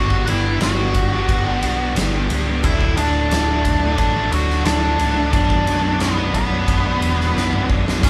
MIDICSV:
0, 0, Header, 1, 7, 480
1, 0, Start_track
1, 0, Key_signature, 2, "minor"
1, 0, Tempo, 674916
1, 1875, Time_signature, 4, 2, 24, 8
1, 5760, End_track
2, 0, Start_track
2, 0, Title_t, "Lead electric guitar"
2, 0, Program_c, 0, 29
2, 0, Note_on_c, 0, 66, 89
2, 0, Note_on_c, 0, 78, 102
2, 171, Note_off_c, 0, 66, 0
2, 196, Note_off_c, 0, 78, 0
2, 205, Note_on_c, 0, 64, 80
2, 210, Note_on_c, 0, 76, 103
2, 424, Note_off_c, 0, 64, 0
2, 437, Note_on_c, 0, 66, 73
2, 442, Note_off_c, 0, 76, 0
2, 445, Note_on_c, 0, 78, 92
2, 1071, Note_off_c, 0, 78, 0
2, 1071, Note_on_c, 0, 76, 92
2, 1368, Note_off_c, 0, 66, 0
2, 1372, Note_off_c, 0, 76, 0
2, 1876, Note_on_c, 0, 64, 89
2, 1884, Note_on_c, 0, 76, 107
2, 2099, Note_off_c, 0, 64, 0
2, 2107, Note_on_c, 0, 62, 79
2, 2112, Note_on_c, 0, 74, 97
2, 2127, Note_off_c, 0, 76, 0
2, 2802, Note_off_c, 0, 62, 0
2, 2826, Note_off_c, 0, 74, 0
2, 2833, Note_on_c, 0, 62, 76
2, 2837, Note_on_c, 0, 74, 96
2, 3057, Note_off_c, 0, 62, 0
2, 3073, Note_on_c, 0, 66, 82
2, 3078, Note_on_c, 0, 78, 97
2, 3082, Note_off_c, 0, 74, 0
2, 3298, Note_off_c, 0, 66, 0
2, 3306, Note_on_c, 0, 62, 79
2, 3313, Note_on_c, 0, 74, 97
2, 3322, Note_off_c, 0, 78, 0
2, 3762, Note_off_c, 0, 62, 0
2, 3782, Note_off_c, 0, 74, 0
2, 3790, Note_on_c, 0, 74, 110
2, 3796, Note_on_c, 0, 62, 91
2, 4246, Note_off_c, 0, 62, 0
2, 4271, Note_off_c, 0, 74, 0
2, 4274, Note_on_c, 0, 71, 94
2, 4280, Note_on_c, 0, 59, 62
2, 4499, Note_off_c, 0, 59, 0
2, 4503, Note_off_c, 0, 71, 0
2, 4511, Note_on_c, 0, 71, 78
2, 4515, Note_on_c, 0, 59, 70
2, 5443, Note_off_c, 0, 71, 0
2, 5445, Note_off_c, 0, 59, 0
2, 5717, Note_on_c, 0, 61, 71
2, 5723, Note_on_c, 0, 73, 98
2, 5760, Note_off_c, 0, 61, 0
2, 5760, Note_off_c, 0, 73, 0
2, 5760, End_track
3, 0, Start_track
3, 0, Title_t, "Overdriven electric guitar"
3, 0, Program_c, 1, 29
3, 556, Note_on_c, 1, 67, 73
3, 560, Note_on_c, 1, 62, 64
3, 565, Note_on_c, 1, 59, 65
3, 572, Note_on_c, 1, 55, 61
3, 673, Note_off_c, 1, 59, 0
3, 676, Note_off_c, 1, 55, 0
3, 680, Note_off_c, 1, 67, 0
3, 682, Note_off_c, 1, 62, 0
3, 1039, Note_on_c, 1, 67, 79
3, 1043, Note_on_c, 1, 62, 77
3, 1048, Note_on_c, 1, 59, 70
3, 1052, Note_on_c, 1, 55, 56
3, 1398, Note_off_c, 1, 55, 0
3, 1398, Note_off_c, 1, 59, 0
3, 1405, Note_off_c, 1, 67, 0
3, 1407, Note_off_c, 1, 62, 0
3, 1521, Note_on_c, 1, 67, 68
3, 1527, Note_on_c, 1, 62, 74
3, 1532, Note_on_c, 1, 59, 72
3, 1533, Note_on_c, 1, 55, 60
3, 1634, Note_off_c, 1, 55, 0
3, 1636, Note_off_c, 1, 59, 0
3, 1645, Note_off_c, 1, 67, 0
3, 1647, Note_off_c, 1, 62, 0
3, 2483, Note_on_c, 1, 62, 74
3, 2494, Note_on_c, 1, 57, 63
3, 2500, Note_on_c, 1, 50, 54
3, 2500, Note_on_c, 1, 54, 63
3, 2599, Note_off_c, 1, 50, 0
3, 2599, Note_off_c, 1, 57, 0
3, 2603, Note_off_c, 1, 54, 0
3, 2608, Note_off_c, 1, 62, 0
3, 2957, Note_on_c, 1, 62, 84
3, 2961, Note_on_c, 1, 57, 73
3, 2968, Note_on_c, 1, 50, 63
3, 2968, Note_on_c, 1, 54, 65
3, 3305, Note_off_c, 1, 50, 0
3, 3312, Note_off_c, 1, 57, 0
3, 3314, Note_off_c, 1, 54, 0
3, 3322, Note_off_c, 1, 62, 0
3, 3428, Note_on_c, 1, 62, 78
3, 3432, Note_on_c, 1, 57, 82
3, 3438, Note_on_c, 1, 54, 67
3, 3439, Note_on_c, 1, 50, 66
3, 3537, Note_off_c, 1, 50, 0
3, 3548, Note_off_c, 1, 57, 0
3, 3549, Note_off_c, 1, 54, 0
3, 3555, Note_off_c, 1, 62, 0
3, 4384, Note_on_c, 1, 62, 81
3, 4392, Note_on_c, 1, 54, 67
3, 4399, Note_on_c, 1, 47, 57
3, 4505, Note_off_c, 1, 47, 0
3, 4511, Note_off_c, 1, 62, 0
3, 4514, Note_off_c, 1, 54, 0
3, 4868, Note_on_c, 1, 62, 77
3, 4873, Note_on_c, 1, 54, 75
3, 4883, Note_on_c, 1, 47, 68
3, 5226, Note_off_c, 1, 47, 0
3, 5229, Note_off_c, 1, 54, 0
3, 5232, Note_off_c, 1, 62, 0
3, 5352, Note_on_c, 1, 62, 73
3, 5362, Note_on_c, 1, 54, 71
3, 5366, Note_on_c, 1, 47, 61
3, 5469, Note_off_c, 1, 47, 0
3, 5473, Note_off_c, 1, 54, 0
3, 5476, Note_off_c, 1, 62, 0
3, 5760, End_track
4, 0, Start_track
4, 0, Title_t, "Distorted electric guitar"
4, 0, Program_c, 2, 30
4, 0, Note_on_c, 2, 43, 90
4, 0, Note_on_c, 2, 50, 90
4, 0, Note_on_c, 2, 55, 97
4, 0, Note_on_c, 2, 59, 102
4, 0, Note_on_c, 2, 62, 100
4, 0, Note_on_c, 2, 67, 90
4, 181, Note_off_c, 2, 55, 0
4, 187, Note_off_c, 2, 59, 0
4, 189, Note_on_c, 2, 55, 81
4, 195, Note_on_c, 2, 59, 86
4, 197, Note_off_c, 2, 67, 0
4, 200, Note_off_c, 2, 62, 0
4, 202, Note_on_c, 2, 62, 89
4, 206, Note_on_c, 2, 67, 86
4, 308, Note_off_c, 2, 67, 0
4, 316, Note_on_c, 2, 67, 71
4, 318, Note_off_c, 2, 59, 0
4, 318, Note_off_c, 2, 62, 0
4, 321, Note_on_c, 2, 62, 74
4, 325, Note_off_c, 2, 55, 0
4, 326, Note_on_c, 2, 59, 64
4, 334, Note_on_c, 2, 55, 56
4, 428, Note_off_c, 2, 43, 0
4, 431, Note_off_c, 2, 50, 0
4, 435, Note_off_c, 2, 55, 0
4, 436, Note_on_c, 2, 43, 89
4, 439, Note_off_c, 2, 59, 0
4, 439, Note_on_c, 2, 50, 97
4, 440, Note_off_c, 2, 67, 0
4, 444, Note_on_c, 2, 55, 97
4, 446, Note_off_c, 2, 62, 0
4, 447, Note_on_c, 2, 59, 97
4, 449, Note_on_c, 2, 62, 93
4, 449, Note_on_c, 2, 67, 102
4, 664, Note_off_c, 2, 55, 0
4, 672, Note_on_c, 2, 55, 74
4, 673, Note_off_c, 2, 59, 0
4, 679, Note_off_c, 2, 62, 0
4, 681, Note_off_c, 2, 67, 0
4, 681, Note_on_c, 2, 59, 87
4, 682, Note_on_c, 2, 62, 73
4, 689, Note_on_c, 2, 67, 86
4, 786, Note_off_c, 2, 67, 0
4, 794, Note_on_c, 2, 67, 81
4, 797, Note_off_c, 2, 59, 0
4, 798, Note_off_c, 2, 62, 0
4, 799, Note_off_c, 2, 55, 0
4, 801, Note_on_c, 2, 62, 74
4, 806, Note_on_c, 2, 59, 70
4, 808, Note_on_c, 2, 55, 62
4, 916, Note_off_c, 2, 43, 0
4, 917, Note_off_c, 2, 50, 0
4, 1146, Note_off_c, 2, 55, 0
4, 1151, Note_off_c, 2, 59, 0
4, 1154, Note_on_c, 2, 55, 75
4, 1160, Note_off_c, 2, 62, 0
4, 1160, Note_on_c, 2, 59, 82
4, 1161, Note_off_c, 2, 67, 0
4, 1163, Note_on_c, 2, 62, 85
4, 1170, Note_on_c, 2, 67, 87
4, 1267, Note_off_c, 2, 67, 0
4, 1276, Note_on_c, 2, 67, 74
4, 1277, Note_off_c, 2, 59, 0
4, 1277, Note_off_c, 2, 62, 0
4, 1280, Note_on_c, 2, 62, 76
4, 1281, Note_off_c, 2, 55, 0
4, 1286, Note_on_c, 2, 59, 57
4, 1290, Note_on_c, 2, 55, 60
4, 1387, Note_on_c, 2, 43, 92
4, 1390, Note_off_c, 2, 55, 0
4, 1393, Note_off_c, 2, 59, 0
4, 1393, Note_on_c, 2, 50, 107
4, 1397, Note_off_c, 2, 67, 0
4, 1399, Note_off_c, 2, 62, 0
4, 1399, Note_on_c, 2, 55, 112
4, 1402, Note_on_c, 2, 59, 110
4, 1402, Note_on_c, 2, 62, 103
4, 1405, Note_on_c, 2, 67, 103
4, 1626, Note_off_c, 2, 55, 0
4, 1630, Note_off_c, 2, 59, 0
4, 1634, Note_on_c, 2, 55, 80
4, 1639, Note_on_c, 2, 59, 75
4, 1641, Note_off_c, 2, 67, 0
4, 1643, Note_off_c, 2, 62, 0
4, 1646, Note_on_c, 2, 62, 75
4, 1649, Note_on_c, 2, 67, 92
4, 1748, Note_off_c, 2, 67, 0
4, 1757, Note_on_c, 2, 67, 87
4, 1760, Note_off_c, 2, 59, 0
4, 1764, Note_off_c, 2, 62, 0
4, 1766, Note_off_c, 2, 55, 0
4, 1767, Note_on_c, 2, 62, 73
4, 1769, Note_on_c, 2, 59, 78
4, 1775, Note_on_c, 2, 55, 70
4, 1857, Note_off_c, 2, 43, 0
4, 1860, Note_off_c, 2, 50, 0
4, 1862, Note_off_c, 2, 67, 0
4, 1868, Note_off_c, 2, 59, 0
4, 1871, Note_off_c, 2, 55, 0
4, 1876, Note_on_c, 2, 38, 92
4, 1879, Note_on_c, 2, 45, 107
4, 1880, Note_on_c, 2, 50, 89
4, 1884, Note_off_c, 2, 62, 0
4, 1885, Note_on_c, 2, 54, 105
4, 1887, Note_on_c, 2, 57, 91
4, 1889, Note_on_c, 2, 62, 99
4, 2106, Note_off_c, 2, 50, 0
4, 2114, Note_off_c, 2, 57, 0
4, 2115, Note_on_c, 2, 50, 86
4, 2118, Note_off_c, 2, 54, 0
4, 2120, Note_on_c, 2, 54, 86
4, 2122, Note_on_c, 2, 57, 83
4, 2126, Note_off_c, 2, 62, 0
4, 2128, Note_on_c, 2, 62, 84
4, 2229, Note_off_c, 2, 57, 0
4, 2232, Note_off_c, 2, 62, 0
4, 2235, Note_on_c, 2, 62, 76
4, 2238, Note_on_c, 2, 57, 68
4, 2241, Note_off_c, 2, 50, 0
4, 2241, Note_off_c, 2, 54, 0
4, 2243, Note_on_c, 2, 54, 58
4, 2249, Note_on_c, 2, 50, 69
4, 2339, Note_off_c, 2, 38, 0
4, 2343, Note_off_c, 2, 45, 0
4, 2348, Note_on_c, 2, 38, 88
4, 2351, Note_off_c, 2, 50, 0
4, 2351, Note_on_c, 2, 45, 94
4, 2353, Note_off_c, 2, 57, 0
4, 2357, Note_off_c, 2, 54, 0
4, 2359, Note_on_c, 2, 50, 94
4, 2360, Note_on_c, 2, 54, 90
4, 2361, Note_on_c, 2, 57, 89
4, 2363, Note_off_c, 2, 62, 0
4, 2365, Note_on_c, 2, 62, 113
4, 2581, Note_off_c, 2, 50, 0
4, 2589, Note_on_c, 2, 50, 72
4, 2592, Note_off_c, 2, 54, 0
4, 2593, Note_off_c, 2, 57, 0
4, 2594, Note_on_c, 2, 54, 70
4, 2599, Note_off_c, 2, 62, 0
4, 2601, Note_on_c, 2, 57, 77
4, 2602, Note_on_c, 2, 62, 88
4, 2706, Note_off_c, 2, 62, 0
4, 2707, Note_off_c, 2, 57, 0
4, 2709, Note_on_c, 2, 62, 80
4, 2715, Note_off_c, 2, 50, 0
4, 2716, Note_on_c, 2, 57, 70
4, 2717, Note_off_c, 2, 54, 0
4, 2720, Note_on_c, 2, 54, 70
4, 2724, Note_on_c, 2, 50, 67
4, 2831, Note_off_c, 2, 38, 0
4, 2833, Note_off_c, 2, 45, 0
4, 3059, Note_off_c, 2, 50, 0
4, 3067, Note_on_c, 2, 50, 76
4, 3073, Note_off_c, 2, 57, 0
4, 3074, Note_off_c, 2, 54, 0
4, 3077, Note_on_c, 2, 54, 88
4, 3079, Note_off_c, 2, 62, 0
4, 3082, Note_on_c, 2, 57, 81
4, 3082, Note_on_c, 2, 62, 95
4, 3182, Note_off_c, 2, 57, 0
4, 3186, Note_off_c, 2, 62, 0
4, 3189, Note_on_c, 2, 62, 75
4, 3191, Note_on_c, 2, 57, 74
4, 3195, Note_off_c, 2, 54, 0
4, 3197, Note_off_c, 2, 50, 0
4, 3198, Note_on_c, 2, 54, 65
4, 3205, Note_on_c, 2, 50, 63
4, 3298, Note_off_c, 2, 50, 0
4, 3301, Note_on_c, 2, 38, 98
4, 3305, Note_off_c, 2, 57, 0
4, 3306, Note_on_c, 2, 45, 95
4, 3307, Note_off_c, 2, 54, 0
4, 3307, Note_on_c, 2, 50, 102
4, 3310, Note_on_c, 2, 54, 102
4, 3314, Note_on_c, 2, 57, 100
4, 3316, Note_off_c, 2, 62, 0
4, 3319, Note_on_c, 2, 62, 98
4, 3533, Note_off_c, 2, 50, 0
4, 3542, Note_on_c, 2, 50, 73
4, 3545, Note_off_c, 2, 54, 0
4, 3546, Note_off_c, 2, 57, 0
4, 3548, Note_on_c, 2, 54, 79
4, 3554, Note_off_c, 2, 62, 0
4, 3555, Note_on_c, 2, 57, 84
4, 3557, Note_on_c, 2, 62, 87
4, 3657, Note_off_c, 2, 62, 0
4, 3658, Note_off_c, 2, 57, 0
4, 3660, Note_on_c, 2, 62, 75
4, 3665, Note_off_c, 2, 50, 0
4, 3667, Note_on_c, 2, 57, 75
4, 3668, Note_off_c, 2, 54, 0
4, 3671, Note_on_c, 2, 54, 69
4, 3674, Note_on_c, 2, 50, 62
4, 3773, Note_off_c, 2, 38, 0
4, 3776, Note_off_c, 2, 45, 0
4, 3776, Note_off_c, 2, 57, 0
4, 3780, Note_off_c, 2, 50, 0
4, 3780, Note_on_c, 2, 35, 92
4, 3788, Note_on_c, 2, 42, 97
4, 3790, Note_off_c, 2, 54, 0
4, 3790, Note_on_c, 2, 47, 98
4, 3793, Note_on_c, 2, 54, 98
4, 3794, Note_off_c, 2, 62, 0
4, 3797, Note_on_c, 2, 62, 104
4, 4018, Note_off_c, 2, 42, 0
4, 4021, Note_off_c, 2, 47, 0
4, 4026, Note_on_c, 2, 42, 74
4, 4027, Note_off_c, 2, 54, 0
4, 4029, Note_on_c, 2, 47, 85
4, 4031, Note_off_c, 2, 62, 0
4, 4036, Note_on_c, 2, 54, 85
4, 4040, Note_on_c, 2, 62, 84
4, 4128, Note_off_c, 2, 62, 0
4, 4133, Note_off_c, 2, 54, 0
4, 4136, Note_on_c, 2, 62, 81
4, 4141, Note_off_c, 2, 47, 0
4, 4141, Note_on_c, 2, 54, 65
4, 4150, Note_on_c, 2, 47, 57
4, 4251, Note_off_c, 2, 35, 0
4, 4253, Note_off_c, 2, 42, 0
4, 4258, Note_off_c, 2, 47, 0
4, 4260, Note_on_c, 2, 35, 92
4, 4261, Note_on_c, 2, 42, 89
4, 4264, Note_off_c, 2, 54, 0
4, 4266, Note_off_c, 2, 62, 0
4, 4267, Note_on_c, 2, 47, 94
4, 4272, Note_on_c, 2, 54, 94
4, 4275, Note_on_c, 2, 62, 102
4, 4489, Note_off_c, 2, 42, 0
4, 4497, Note_off_c, 2, 47, 0
4, 4498, Note_on_c, 2, 42, 74
4, 4502, Note_off_c, 2, 54, 0
4, 4504, Note_off_c, 2, 62, 0
4, 4506, Note_on_c, 2, 47, 76
4, 4510, Note_on_c, 2, 54, 81
4, 4513, Note_on_c, 2, 62, 81
4, 4617, Note_off_c, 2, 62, 0
4, 4626, Note_off_c, 2, 54, 0
4, 4626, Note_on_c, 2, 62, 79
4, 4633, Note_off_c, 2, 47, 0
4, 4634, Note_on_c, 2, 54, 62
4, 4641, Note_on_c, 2, 47, 62
4, 4746, Note_off_c, 2, 35, 0
4, 4865, Note_off_c, 2, 42, 0
4, 4982, Note_off_c, 2, 47, 0
4, 4985, Note_on_c, 2, 42, 76
4, 4989, Note_off_c, 2, 54, 0
4, 4991, Note_on_c, 2, 47, 79
4, 4992, Note_off_c, 2, 62, 0
4, 4997, Note_on_c, 2, 54, 83
4, 5000, Note_on_c, 2, 62, 91
4, 5091, Note_off_c, 2, 62, 0
4, 5100, Note_off_c, 2, 54, 0
4, 5100, Note_on_c, 2, 62, 71
4, 5106, Note_off_c, 2, 47, 0
4, 5108, Note_on_c, 2, 54, 73
4, 5115, Note_on_c, 2, 47, 68
4, 5219, Note_off_c, 2, 42, 0
4, 5222, Note_off_c, 2, 47, 0
4, 5226, Note_off_c, 2, 54, 0
4, 5227, Note_on_c, 2, 35, 97
4, 5227, Note_on_c, 2, 42, 92
4, 5231, Note_on_c, 2, 47, 105
4, 5233, Note_off_c, 2, 62, 0
4, 5235, Note_on_c, 2, 54, 107
4, 5242, Note_on_c, 2, 62, 107
4, 5455, Note_off_c, 2, 42, 0
4, 5457, Note_off_c, 2, 47, 0
4, 5460, Note_off_c, 2, 54, 0
4, 5464, Note_on_c, 2, 42, 75
4, 5465, Note_on_c, 2, 47, 75
4, 5468, Note_off_c, 2, 62, 0
4, 5469, Note_on_c, 2, 54, 80
4, 5476, Note_on_c, 2, 62, 79
4, 5566, Note_off_c, 2, 62, 0
4, 5575, Note_on_c, 2, 62, 91
4, 5579, Note_off_c, 2, 54, 0
4, 5584, Note_off_c, 2, 47, 0
4, 5587, Note_on_c, 2, 54, 65
4, 5593, Note_on_c, 2, 47, 60
4, 5689, Note_off_c, 2, 35, 0
4, 5689, Note_off_c, 2, 62, 0
4, 5693, Note_off_c, 2, 42, 0
4, 5695, Note_off_c, 2, 54, 0
4, 5696, Note_off_c, 2, 47, 0
4, 5698, Note_on_c, 2, 35, 92
4, 5703, Note_on_c, 2, 42, 94
4, 5705, Note_on_c, 2, 47, 89
4, 5711, Note_on_c, 2, 54, 94
4, 5716, Note_on_c, 2, 62, 102
4, 5760, Note_off_c, 2, 35, 0
4, 5760, Note_off_c, 2, 42, 0
4, 5760, Note_off_c, 2, 47, 0
4, 5760, Note_off_c, 2, 54, 0
4, 5760, Note_off_c, 2, 62, 0
4, 5760, End_track
5, 0, Start_track
5, 0, Title_t, "Picked electric bass"
5, 0, Program_c, 3, 34
5, 0, Note_on_c, 3, 31, 92
5, 177, Note_off_c, 3, 31, 0
5, 188, Note_on_c, 3, 31, 91
5, 415, Note_off_c, 3, 31, 0
5, 425, Note_on_c, 3, 31, 94
5, 653, Note_off_c, 3, 31, 0
5, 675, Note_on_c, 3, 31, 91
5, 898, Note_off_c, 3, 31, 0
5, 915, Note_on_c, 3, 31, 96
5, 1139, Note_off_c, 3, 31, 0
5, 1152, Note_on_c, 3, 35, 86
5, 1377, Note_off_c, 3, 35, 0
5, 1388, Note_on_c, 3, 31, 89
5, 1615, Note_off_c, 3, 31, 0
5, 1631, Note_on_c, 3, 25, 94
5, 1856, Note_off_c, 3, 25, 0
5, 1878, Note_on_c, 3, 26, 90
5, 2100, Note_off_c, 3, 26, 0
5, 2110, Note_on_c, 3, 26, 92
5, 2336, Note_off_c, 3, 26, 0
5, 2342, Note_on_c, 3, 26, 94
5, 2571, Note_off_c, 3, 26, 0
5, 2597, Note_on_c, 3, 26, 98
5, 2819, Note_off_c, 3, 26, 0
5, 2834, Note_on_c, 3, 33, 90
5, 3057, Note_off_c, 3, 33, 0
5, 3063, Note_on_c, 3, 26, 94
5, 3292, Note_off_c, 3, 26, 0
5, 3310, Note_on_c, 3, 26, 86
5, 3536, Note_off_c, 3, 26, 0
5, 3547, Note_on_c, 3, 25, 93
5, 3774, Note_off_c, 3, 25, 0
5, 3792, Note_on_c, 3, 23, 92
5, 4016, Note_off_c, 3, 23, 0
5, 4028, Note_on_c, 3, 23, 96
5, 4254, Note_off_c, 3, 23, 0
5, 4260, Note_on_c, 3, 23, 88
5, 4490, Note_off_c, 3, 23, 0
5, 4509, Note_on_c, 3, 23, 92
5, 4734, Note_off_c, 3, 23, 0
5, 4751, Note_on_c, 3, 23, 82
5, 4975, Note_off_c, 3, 23, 0
5, 4987, Note_on_c, 3, 28, 96
5, 5213, Note_off_c, 3, 28, 0
5, 5227, Note_on_c, 3, 23, 82
5, 5453, Note_off_c, 3, 23, 0
5, 5475, Note_on_c, 3, 23, 87
5, 5697, Note_off_c, 3, 23, 0
5, 5713, Note_on_c, 3, 23, 86
5, 5760, Note_off_c, 3, 23, 0
5, 5760, End_track
6, 0, Start_track
6, 0, Title_t, "Muted overdriven electric guitar strokes"
6, 682, Note_on_c, 9, 29, 49
6, 753, Note_off_c, 9, 29, 0
6, 2606, Note_on_c, 9, 29, 54
6, 2677, Note_off_c, 9, 29, 0
6, 4512, Note_on_c, 9, 29, 48
6, 4583, Note_off_c, 9, 29, 0
6, 5760, End_track
7, 0, Start_track
7, 0, Title_t, "Drums"
7, 73, Note_on_c, 9, 36, 86
7, 144, Note_off_c, 9, 36, 0
7, 195, Note_on_c, 9, 51, 84
7, 266, Note_off_c, 9, 51, 0
7, 432, Note_on_c, 9, 51, 104
7, 440, Note_on_c, 9, 38, 108
7, 503, Note_off_c, 9, 51, 0
7, 511, Note_off_c, 9, 38, 0
7, 672, Note_on_c, 9, 51, 75
7, 675, Note_on_c, 9, 36, 87
7, 743, Note_off_c, 9, 51, 0
7, 746, Note_off_c, 9, 36, 0
7, 916, Note_on_c, 9, 36, 108
7, 916, Note_on_c, 9, 51, 97
7, 987, Note_off_c, 9, 36, 0
7, 987, Note_off_c, 9, 51, 0
7, 1156, Note_on_c, 9, 51, 75
7, 1227, Note_off_c, 9, 51, 0
7, 1395, Note_on_c, 9, 51, 118
7, 1404, Note_on_c, 9, 38, 109
7, 1466, Note_off_c, 9, 51, 0
7, 1475, Note_off_c, 9, 38, 0
7, 1636, Note_on_c, 9, 51, 89
7, 1707, Note_off_c, 9, 51, 0
7, 1875, Note_on_c, 9, 51, 111
7, 1877, Note_on_c, 9, 36, 104
7, 1947, Note_off_c, 9, 51, 0
7, 1948, Note_off_c, 9, 36, 0
7, 1995, Note_on_c, 9, 36, 86
7, 2066, Note_off_c, 9, 36, 0
7, 2114, Note_on_c, 9, 51, 88
7, 2186, Note_off_c, 9, 51, 0
7, 2356, Note_on_c, 9, 51, 114
7, 2365, Note_on_c, 9, 38, 108
7, 2427, Note_off_c, 9, 51, 0
7, 2436, Note_off_c, 9, 38, 0
7, 2594, Note_on_c, 9, 36, 80
7, 2596, Note_on_c, 9, 51, 79
7, 2665, Note_off_c, 9, 36, 0
7, 2667, Note_off_c, 9, 51, 0
7, 2831, Note_on_c, 9, 51, 92
7, 2834, Note_on_c, 9, 36, 107
7, 2902, Note_off_c, 9, 51, 0
7, 2905, Note_off_c, 9, 36, 0
7, 3075, Note_on_c, 9, 51, 77
7, 3146, Note_off_c, 9, 51, 0
7, 3203, Note_on_c, 9, 38, 35
7, 3274, Note_off_c, 9, 38, 0
7, 3310, Note_on_c, 9, 51, 105
7, 3319, Note_on_c, 9, 38, 115
7, 3381, Note_off_c, 9, 51, 0
7, 3390, Note_off_c, 9, 38, 0
7, 3552, Note_on_c, 9, 51, 74
7, 3623, Note_off_c, 9, 51, 0
7, 3792, Note_on_c, 9, 36, 113
7, 3792, Note_on_c, 9, 51, 104
7, 3863, Note_off_c, 9, 36, 0
7, 3863, Note_off_c, 9, 51, 0
7, 3912, Note_on_c, 9, 36, 93
7, 3983, Note_off_c, 9, 36, 0
7, 4034, Note_on_c, 9, 51, 79
7, 4105, Note_off_c, 9, 51, 0
7, 4269, Note_on_c, 9, 51, 95
7, 4278, Note_on_c, 9, 38, 111
7, 4340, Note_off_c, 9, 51, 0
7, 4349, Note_off_c, 9, 38, 0
7, 4512, Note_on_c, 9, 36, 78
7, 4513, Note_on_c, 9, 51, 73
7, 4583, Note_off_c, 9, 36, 0
7, 4584, Note_off_c, 9, 51, 0
7, 4751, Note_on_c, 9, 36, 100
7, 4751, Note_on_c, 9, 51, 98
7, 4822, Note_off_c, 9, 36, 0
7, 4822, Note_off_c, 9, 51, 0
7, 4994, Note_on_c, 9, 51, 77
7, 5065, Note_off_c, 9, 51, 0
7, 5125, Note_on_c, 9, 38, 33
7, 5196, Note_off_c, 9, 38, 0
7, 5241, Note_on_c, 9, 38, 72
7, 5312, Note_off_c, 9, 38, 0
7, 5355, Note_on_c, 9, 47, 74
7, 5426, Note_off_c, 9, 47, 0
7, 5473, Note_on_c, 9, 36, 86
7, 5544, Note_off_c, 9, 36, 0
7, 5605, Note_on_c, 9, 38, 98
7, 5677, Note_off_c, 9, 38, 0
7, 5713, Note_on_c, 9, 36, 116
7, 5717, Note_on_c, 9, 49, 123
7, 5760, Note_off_c, 9, 36, 0
7, 5760, Note_off_c, 9, 49, 0
7, 5760, End_track
0, 0, End_of_file